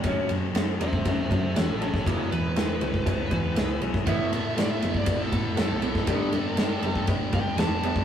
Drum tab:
RD |x-x-x-x-x-x-x-x-|x-x-x-x-x-x-x-x-|x-x-x-x-x-x-x-x-|x-x-x-x-x-x-x-x-|
SD |----o-------o--o|----o-------o--o|----o-------o--o|----o-------o---|
BD |o------oo-o----o|o------oo-o----o|o------oo-o----o|o------oo-o----o|